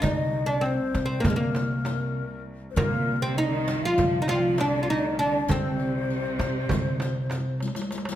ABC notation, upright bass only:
X:1
M:9/8
L:1/8
Q:3/8=66
K:none
V:1 name="Upright bass" clef=bass
C,3 C, C,4 z | C,4 C,4 z | C,3 C, C,4 z |]